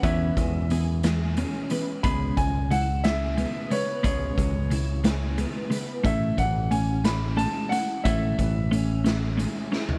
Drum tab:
HH |x-x-x-x-x-x-|x-x-x-x-x-x-|x-x-x-x-x-x-|x-x-x-x-x-x-|
SD |------o-----|------o-----|------o-----|------o-----|
FT |------------|------------|------------|------------|
BD |o-o---------|o-o---------|o-o---------|o-o---------|

HH |x-x-x-x-x---|
SD |------o---o-|
FT |-----------o|
BD |o-o---------|